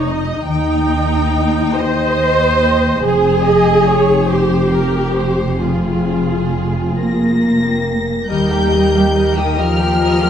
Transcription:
0.00 0.44 F1 soft
0.00 0.44 F2 soft
0.00 2.03 C3 soft
0.00 0.51 F3 soft
0.00 2.46 G#3 soft
0.00 0.46 D#4 medium
0.00 1.32 D#4 soft
0.00 2.24 D#5 soft
0.05 0.51 G#4 soft
0.05 0.49 D#5 medium
0.47 3.00 D#2 medium
0.47 3.07 D#3 soft
0.47 1.74 D#4 medium
0.47 1.74 G5 medium
0.90 4.80 C6 soft
1.33 3.88 D#4 soft
1.76 2.18 G4 soft
1.76 3.04 C5 medium
1.76 3.04 D#5 medium
1.98 2.34 G#4 soft
2.20 2.60 G4 soft
2.62 3.07 G4 soft
3.04 8.06 F1 medium
3.04 6.94 F2 medium
3.04 5.62 F3 medium
3.04 4.29 G#4 loud
3.04 3.46 C5 medium
3.46 3.89 D#5 medium
3.88 5.67 D#4 soft
3.88 4.31 C#5 medium
4.10 4.95 C4 soft
4.30 4.74 F4 soft
4.30 5.62 G4 medium
4.30 4.74 C5 medium
4.53 4.90 G4 soft
4.72 5.16 F4 soft
4.72 5.17 A#4 medium
4.97 5.39 C4 soft
5.16 6.51 F4 soft
5.16 5.61 C5 medium
5.40 5.84 C4 soft
5.61 8.33 F3 soft
5.61 7.82 F4 medium
5.61 7.63 G#4 soft
5.85 6.29 C4 soft
6.07 8.33 C5 soft
6.30 6.74 C4 soft
6.53 8.33 F4 soft
6.75 7.63 C4 soft
6.97 8.26 A#3 medium
6.97 7.41 G#4 soft
6.97 8.26 A#4 medium
6.97 8.26 A#6 medium
7.19 7.57 A#4 soft
7.42 7.86 G#4 soft
7.65 8.07 C4 soft
7.87 8.33 G#4 soft
8.08 8.33 C4 soft
8.29 9.43 D#2 medium
8.29 10.30 D#3 medium
8.29 8.49 G3 medium
8.29 9.35 G3 medium
8.29 8.49 G4 medium
8.29 9.35 G4 medium
8.29 8.49 A#4 soft
8.29 8.49 D#5 medium
8.29 9.37 G6 medium
8.51 8.73 A#3 soft
8.51 10.30 A#3 soft
8.51 8.73 G4 soft
8.51 8.73 A#4 soft
8.51 8.73 G5 medium
8.71 8.94 G3 soft
8.71 8.94 G4 soft
8.71 10.30 G4 soft
8.71 8.94 A#4 soft
8.71 8.93 D#5 soft
8.94 9.15 A#3 soft
8.94 9.17 G4 soft
8.94 9.15 A#4 soft
8.94 10.21 D#5 soft
8.94 9.17 G5 soft
9.15 9.35 G3 soft
9.15 9.35 G4 soft
9.15 9.99 A#4 soft
9.15 9.36 A#4 soft
9.15 9.36 D#5 soft
9.36 9.58 D#3 medium
9.36 9.58 A#3 soft
9.36 9.59 D#4 medium
9.36 9.58 G4 soft
9.36 9.58 A#4 soft
9.36 9.58 G5 soft
9.36 9.78 G5 medium
9.36 9.59 D#6 medium
9.55 10.30 F3 medium
9.55 9.80 G3 medium
9.55 10.30 F4 medium
9.55 9.80 G4 medium
9.55 9.78 A#4 soft
9.55 9.79 D#5 soft
9.55 10.30 D#6 medium
9.55 10.30 F6 medium
9.59 10.30 D#2 medium
9.79 10.01 A#3 medium
9.79 10.01 G4 soft
9.79 10.01 A#4 medium
9.79 10.30 G5 medium
9.79 10.01 G5 soft
10.00 10.21 G3 medium
10.00 10.21 G4 medium
10.00 10.30 A#4 medium
10.00 10.21 A#4 medium
10.00 10.21 D#5 medium
10.21 10.30 A#3 medium
10.21 10.30 G4 medium
10.21 10.30 A#4 medium
10.21 10.30 D#5 medium
10.21 10.30 G5 medium

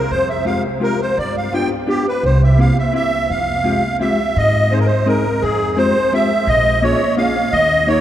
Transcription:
0.00 0.11 A#4 medium
0.11 0.57 F2 medium
0.11 0.29 C5 medium
0.29 0.45 E5 medium
0.45 0.63 G#3 medium
0.45 0.63 C4 soft
0.45 0.64 F4 medium
0.45 0.64 G4 medium
0.45 0.63 F5 medium
0.80 0.99 G#3 medium
0.80 0.99 C4 soft
0.80 0.99 F4 soft
0.80 1.00 G4 medium
0.80 1.01 A#4 medium
1.01 1.18 C5 medium
1.17 1.63 G2 medium
1.17 1.36 D5 medium
1.37 1.54 F5 medium
1.52 1.70 B3 medium
1.52 1.70 D4 soft
1.52 1.71 F4 medium
1.52 1.71 G4 medium
1.52 1.69 G5 medium
1.87 2.05 B3 medium
1.87 2.05 D4 soft
1.87 2.05 F4 soft
1.87 2.06 G4 medium
2.08 2.24 B4 medium
2.23 2.69 C2 medium
2.23 2.42 C5 medium
2.43 2.60 E5 medium
2.58 2.76 A#3 medium
2.58 2.76 C4 soft
2.58 2.76 E4 medium
2.58 2.77 G4 medium
2.58 2.77 F5 medium
2.79 2.94 E5 medium
2.93 3.11 A#3 medium
2.93 3.11 C4 soft
2.93 3.11 E4 soft
2.93 3.11 G4 medium
2.93 3.31 E5 medium
3.30 3.76 F2 medium
3.30 3.97 F5 medium
3.64 3.82 G#3 medium
3.64 3.82 C4 soft
3.64 3.83 F4 soft
3.64 3.83 G4 medium
3.99 4.18 G#3 medium
3.99 4.18 C4 soft
3.99 4.19 F4 medium
3.99 4.19 G4 medium
3.99 4.37 E5 medium
4.36 4.82 G#2 medium
4.36 4.73 D#5 medium
4.70 4.89 G#3 medium
4.70 4.89 C4 soft
4.70 4.90 D#4 soft
4.70 4.90 G#4 medium
4.70 4.79 C5 medium
4.80 4.87 A#4 medium
4.86 5.08 C5 medium
5.06 5.24 G#3 medium
5.06 5.24 C4 medium
5.06 5.25 D#4 medium
5.06 5.25 G#4 medium
5.06 5.43 A#4 medium
5.42 5.88 F2 medium
5.42 5.78 G#4 medium
5.77 5.95 G#3 medium
5.77 5.95 C4 medium
5.77 5.95 F4 soft
5.77 5.95 G4 medium
5.77 6.13 C5 medium
6.12 6.30 G#3 medium
6.12 6.30 C4 medium
6.12 6.30 F4 medium
6.12 6.31 G4 medium
6.12 6.49 E5 medium
6.47 6.93 A#1 loud
6.47 6.84 D#5 loud
6.82 7.00 A#3 medium
6.82 7.00 C#4 medium
6.82 7.00 F4 medium
6.82 7.00 G#4 medium
6.82 7.15 C#5 medium
7.17 7.35 A#3 medium
7.17 7.35 C#4 medium
7.17 7.35 F4 medium
7.17 7.35 G#4 medium
7.17 7.53 F5 medium
7.52 7.98 D#2 medium
7.52 7.88 D#5 loud
7.87 8.01 A#3 medium
7.87 8.01 D#4 medium
7.87 8.01 G4 soft
7.87 8.01 A#4 medium
7.87 8.01 C#5 medium

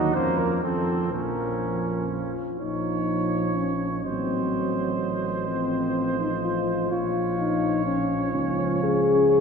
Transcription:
0.00 0.16 D#2 medium
0.00 0.17 F#3 medium
0.00 0.16 D#4 medium
0.00 0.17 D#4 soft
0.00 0.11 F#4 medium
0.14 0.62 F2 soft
0.14 0.63 F3 soft
0.14 0.63 A#3 medium
0.14 0.63 C#4 soft
0.14 0.40 C5 medium
0.38 0.63 A#4 medium
0.63 1.14 F2 soft
0.63 1.12 F3 soft
0.63 1.11 C4 soft
0.63 1.12 C4 soft
0.63 1.11 A4 medium
1.12 2.36 A#1 soft
1.12 2.34 F3 soft
1.12 2.09 C#4 soft
1.12 2.33 C#4 soft
1.12 2.09 A#4 medium
2.11 2.57 F4 soft
2.60 4.01 A#1 soft
2.60 4.01 F3 soft
2.60 3.58 D#4 medium
2.60 4.01 C#5 soft
3.56 3.91 C#4 soft
4.05 6.88 A1 soft
4.05 5.45 F#3 soft
4.05 4.99 C4 medium
4.05 6.88 C5 soft
4.05 6.88 D#5 soft
5.49 8.30 F3 soft
5.49 6.16 C4 medium
6.20 6.31 D#4 medium
6.44 6.91 F4 medium
6.91 8.31 A#1 medium
6.91 7.38 F4 medium
6.91 9.40 C#5 soft
6.91 9.40 F5 soft
7.39 7.85 D#4 medium
7.86 8.33 C#4 medium
8.34 9.40 C#2 medium
8.34 9.40 F3 medium
8.34 8.82 C#4 medium
8.83 9.40 G#4 loud

